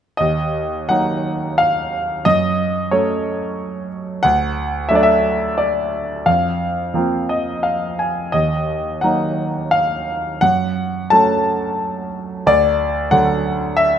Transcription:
0.17 2.22 D#2 soft
0.17 0.84 D#5 medium
0.89 2.22 F#3 soft
0.89 2.22 A#3 soft
0.89 2.22 D#4 soft
0.89 1.60 F#5 medium
1.58 2.27 F5 medium
2.25 4.21 F#2 soft
2.25 2.88 D#5 medium
2.91 4.20 F#3 soft
2.91 4.21 A3 soft
2.91 4.21 C#4 soft
2.91 3.87 C#5 medium
4.23 6.23 D2 medium
4.23 4.86 F#5 medium
4.89 6.23 F#3 soft
4.89 6.23 A3 soft
4.89 6.23 D4 soft
4.89 4.97 E5 medium
4.95 5.03 D5 medium
5.03 5.59 E5 medium
5.58 6.28 D5 medium
6.26 8.30 F2 soft
6.26 7.59 F5 medium
6.94 8.30 F3 soft
6.94 8.30 A#3 soft
6.94 8.30 C4 soft
7.29 7.62 D#5 medium
7.63 7.96 F5 soft
7.99 8.32 G#5 soft
8.32 10.38 D#2 soft
8.32 9.05 D#5 medium
9.01 10.39 F#3 soft
9.01 10.39 A#3 soft
9.01 10.39 D#4 soft
9.01 9.74 F#5 medium
9.71 10.44 F5 medium
10.41 12.42 F#2 soft
10.41 11.13 F#5 medium
11.10 12.42 F#3 soft
11.10 12.42 A3 soft
11.10 12.42 C#4 soft
11.10 12.08 A5 medium
12.46 13.99 D2 medium
12.46 13.14 D5 medium
13.11 13.99 D3 soft
13.11 13.99 F#3 soft
13.11 13.99 A3 soft
13.11 13.79 F#5 medium
13.77 13.99 E5 medium

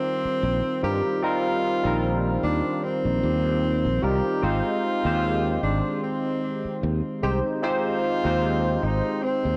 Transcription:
0.00 0.79 D#3 medium
0.00 0.82 G3 medium
0.00 0.83 C4 medium
0.00 0.83 C4 loud
0.00 0.83 D#4 medium
0.00 0.84 F4 medium
0.00 0.84 A#4 loud
0.25 muted fretless electric bass stroke soft
0.43 0.60 A#1 loud
0.82 1.00 G2 medium
0.82 1.18 G3 medium
0.82 1.19 C4 medium
0.82 1.19 D#4 medium
0.82 1.19 F4 medium
0.82 1.25 G4 loud
0.82 1.19 A#4 medium
1.22 1.79 G3 medium
1.22 1.80 C4 medium
1.22 1.80 D#4 medium
1.22 2.17 F4 loud
1.22 1.80 F4 medium
1.22 1.80 A#4 loud
1.83 2.37 A#1 loud
1.83 3.99 D#3 medium
1.83 3.98 G3 medium
1.83 3.98 C4 medium
1.83 3.99 F4 medium
1.83 4.00 A#4 medium
2.43 2.60 D#2 loud
2.43 2.85 D4 loud
2.83 4.05 C4 loud
3.05 3.19 A#1 medium
3.23 3.86 D#2 loud
3.85 3.99 A#1 medium
4.02 4.20 C2 loud
4.02 4.38 G3 medium
4.02 4.38 C4 medium
4.02 4.39 D#4 medium
4.02 4.39 F4 medium
4.02 4.45 G4 loud
4.02 4.39 A#4 medium
4.42 4.60 G#1 loud
4.42 4.99 G#3 medium
4.42 4.99 C4 medium
4.42 5.00 D#4 medium
4.42 5.63 F4 loud
4.42 5.00 G4 medium
4.42 5.00 C5 loud
5.04 5.57 D#2 loud
5.04 7.19 D#3 medium
5.04 7.18 G#3 medium
5.04 7.19 C4 medium
5.04 7.19 G4 medium
5.04 7.20 C5 medium
5.63 5.80 G#1 loud
5.63 6.00 D4 loud
6.03 6.93 C4 loud
6.65 muted fretless electric bass stroke soft
6.83 7.00 D#2 loud
7.23 7.40 C2 medium
7.23 7.59 G#3 medium
7.23 7.59 C4 medium
7.23 7.59 D#4 medium
7.23 7.39 G4 loud
7.23 7.59 G4 medium
7.23 7.59 C5 medium
7.62 8.19 G#3 medium
7.62 8.20 C4 medium
7.62 8.20 D#4 medium
7.62 8.85 F4 loud
7.62 8.20 G4 medium
7.62 8.20 C5 loud
8.23 8.77 D#2 loud
8.23 9.57 G#3 medium
8.23 9.57 C4 medium
8.23 9.57 D#4 medium
8.23 9.57 G4 medium
8.23 9.57 C5 medium
8.83 9.00 G#1 medium
8.83 9.25 D#4 loud
9.23 9.57 C4 loud
9.45 9.57 D#2 medium

